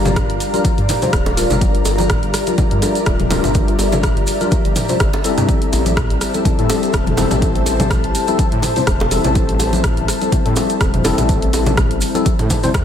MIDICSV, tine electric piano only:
0, 0, Header, 1, 2, 480
1, 0, Start_track
1, 0, Tempo, 483871
1, 1602, Time_signature, 4, 2, 24, 8
1, 12742, End_track
2, 0, Start_track
2, 0, Title_t, "Tine electric piano"
2, 0, Program_c, 0, 4
2, 0, Note_on_c, 0, 55, 97
2, 0, Note_on_c, 0, 62, 91
2, 0, Note_on_c, 0, 65, 89
2, 0, Note_on_c, 0, 70, 104
2, 502, Note_off_c, 0, 55, 0
2, 502, Note_off_c, 0, 62, 0
2, 502, Note_off_c, 0, 65, 0
2, 502, Note_off_c, 0, 70, 0
2, 532, Note_on_c, 0, 62, 87
2, 532, Note_on_c, 0, 65, 91
2, 532, Note_on_c, 0, 70, 110
2, 533, Note_on_c, 0, 55, 97
2, 630, Note_off_c, 0, 55, 0
2, 630, Note_off_c, 0, 62, 0
2, 630, Note_off_c, 0, 65, 0
2, 630, Note_off_c, 0, 70, 0
2, 1013, Note_on_c, 0, 55, 84
2, 1014, Note_on_c, 0, 62, 76
2, 1014, Note_on_c, 0, 65, 78
2, 1014, Note_on_c, 0, 72, 97
2, 1074, Note_off_c, 0, 55, 0
2, 1074, Note_off_c, 0, 62, 0
2, 1074, Note_off_c, 0, 65, 0
2, 1074, Note_off_c, 0, 72, 0
2, 1360, Note_on_c, 0, 55, 100
2, 1360, Note_on_c, 0, 62, 93
2, 1360, Note_on_c, 0, 65, 89
2, 1360, Note_on_c, 0, 70, 111
2, 2421, Note_off_c, 0, 55, 0
2, 2421, Note_off_c, 0, 62, 0
2, 2421, Note_off_c, 0, 65, 0
2, 2421, Note_off_c, 0, 70, 0
2, 2454, Note_on_c, 0, 55, 80
2, 2454, Note_on_c, 0, 62, 73
2, 2454, Note_on_c, 0, 70, 84
2, 2455, Note_on_c, 0, 65, 73
2, 2662, Note_off_c, 0, 55, 0
2, 2662, Note_off_c, 0, 62, 0
2, 2662, Note_off_c, 0, 70, 0
2, 2663, Note_off_c, 0, 65, 0
2, 2692, Note_on_c, 0, 55, 84
2, 2692, Note_on_c, 0, 62, 79
2, 2693, Note_on_c, 0, 65, 75
2, 2693, Note_on_c, 0, 70, 90
2, 3255, Note_off_c, 0, 55, 0
2, 3256, Note_off_c, 0, 62, 0
2, 3256, Note_off_c, 0, 65, 0
2, 3256, Note_off_c, 0, 70, 0
2, 3280, Note_on_c, 0, 62, 88
2, 3281, Note_on_c, 0, 55, 99
2, 3281, Note_on_c, 0, 65, 88
2, 3281, Note_on_c, 0, 70, 108
2, 4341, Note_off_c, 0, 55, 0
2, 4341, Note_off_c, 0, 62, 0
2, 4341, Note_off_c, 0, 65, 0
2, 4341, Note_off_c, 0, 70, 0
2, 4372, Note_on_c, 0, 55, 99
2, 4372, Note_on_c, 0, 62, 91
2, 4372, Note_on_c, 0, 70, 108
2, 4373, Note_on_c, 0, 65, 93
2, 4470, Note_off_c, 0, 55, 0
2, 4470, Note_off_c, 0, 62, 0
2, 4470, Note_off_c, 0, 65, 0
2, 4470, Note_off_c, 0, 70, 0
2, 4853, Note_on_c, 0, 65, 76
2, 4853, Note_on_c, 0, 72, 92
2, 4854, Note_on_c, 0, 55, 80
2, 4854, Note_on_c, 0, 62, 75
2, 4914, Note_off_c, 0, 55, 0
2, 4914, Note_off_c, 0, 62, 0
2, 4914, Note_off_c, 0, 65, 0
2, 4914, Note_off_c, 0, 72, 0
2, 5202, Note_on_c, 0, 55, 97
2, 5202, Note_on_c, 0, 60, 89
2, 5202, Note_on_c, 0, 69, 108
2, 5203, Note_on_c, 0, 64, 93
2, 6262, Note_off_c, 0, 55, 0
2, 6262, Note_off_c, 0, 60, 0
2, 6262, Note_off_c, 0, 64, 0
2, 6262, Note_off_c, 0, 69, 0
2, 6291, Note_on_c, 0, 55, 77
2, 6291, Note_on_c, 0, 60, 68
2, 6291, Note_on_c, 0, 64, 71
2, 6291, Note_on_c, 0, 69, 85
2, 6501, Note_off_c, 0, 55, 0
2, 6501, Note_off_c, 0, 60, 0
2, 6501, Note_off_c, 0, 64, 0
2, 6501, Note_off_c, 0, 69, 0
2, 6531, Note_on_c, 0, 64, 74
2, 6532, Note_on_c, 0, 55, 86
2, 6532, Note_on_c, 0, 60, 78
2, 6532, Note_on_c, 0, 69, 95
2, 7095, Note_off_c, 0, 55, 0
2, 7095, Note_off_c, 0, 60, 0
2, 7095, Note_off_c, 0, 64, 0
2, 7095, Note_off_c, 0, 69, 0
2, 7122, Note_on_c, 0, 55, 96
2, 7122, Note_on_c, 0, 60, 87
2, 7123, Note_on_c, 0, 64, 90
2, 7123, Note_on_c, 0, 69, 109
2, 8182, Note_off_c, 0, 55, 0
2, 8182, Note_off_c, 0, 60, 0
2, 8182, Note_off_c, 0, 64, 0
2, 8182, Note_off_c, 0, 69, 0
2, 8214, Note_on_c, 0, 60, 92
2, 8214, Note_on_c, 0, 69, 108
2, 8215, Note_on_c, 0, 55, 103
2, 8215, Note_on_c, 0, 64, 95
2, 8311, Note_off_c, 0, 55, 0
2, 8311, Note_off_c, 0, 60, 0
2, 8311, Note_off_c, 0, 64, 0
2, 8311, Note_off_c, 0, 69, 0
2, 8693, Note_on_c, 0, 60, 74
2, 8693, Note_on_c, 0, 64, 75
2, 8693, Note_on_c, 0, 72, 96
2, 8694, Note_on_c, 0, 55, 85
2, 8754, Note_off_c, 0, 55, 0
2, 8754, Note_off_c, 0, 60, 0
2, 8754, Note_off_c, 0, 64, 0
2, 8754, Note_off_c, 0, 72, 0
2, 9041, Note_on_c, 0, 64, 93
2, 9042, Note_on_c, 0, 55, 101
2, 9042, Note_on_c, 0, 60, 91
2, 9042, Note_on_c, 0, 69, 113
2, 10102, Note_off_c, 0, 55, 0
2, 10102, Note_off_c, 0, 60, 0
2, 10102, Note_off_c, 0, 64, 0
2, 10102, Note_off_c, 0, 69, 0
2, 10131, Note_on_c, 0, 55, 79
2, 10131, Note_on_c, 0, 69, 86
2, 10132, Note_on_c, 0, 60, 72
2, 10132, Note_on_c, 0, 64, 73
2, 10341, Note_off_c, 0, 55, 0
2, 10341, Note_off_c, 0, 60, 0
2, 10341, Note_off_c, 0, 64, 0
2, 10341, Note_off_c, 0, 69, 0
2, 10370, Note_on_c, 0, 55, 86
2, 10370, Note_on_c, 0, 64, 79
2, 10371, Note_on_c, 0, 60, 82
2, 10371, Note_on_c, 0, 69, 96
2, 10935, Note_off_c, 0, 55, 0
2, 10935, Note_off_c, 0, 60, 0
2, 10935, Note_off_c, 0, 64, 0
2, 10935, Note_off_c, 0, 69, 0
2, 10958, Note_on_c, 0, 64, 90
2, 10959, Note_on_c, 0, 55, 95
2, 10959, Note_on_c, 0, 60, 87
2, 10959, Note_on_c, 0, 69, 108
2, 12020, Note_off_c, 0, 60, 0
2, 12020, Note_off_c, 0, 64, 0
2, 12020, Note_off_c, 0, 69, 0
2, 12021, Note_off_c, 0, 55, 0
2, 12052, Note_on_c, 0, 55, 102
2, 12052, Note_on_c, 0, 69, 114
2, 12053, Note_on_c, 0, 60, 96
2, 12053, Note_on_c, 0, 64, 92
2, 12150, Note_off_c, 0, 55, 0
2, 12150, Note_off_c, 0, 60, 0
2, 12150, Note_off_c, 0, 64, 0
2, 12150, Note_off_c, 0, 69, 0
2, 12533, Note_on_c, 0, 55, 105
2, 12533, Note_on_c, 0, 72, 116
2, 12534, Note_on_c, 0, 60, 100
2, 12534, Note_on_c, 0, 64, 102
2, 12594, Note_off_c, 0, 55, 0
2, 12594, Note_off_c, 0, 60, 0
2, 12594, Note_off_c, 0, 64, 0
2, 12594, Note_off_c, 0, 72, 0
2, 12742, End_track
0, 0, End_of_file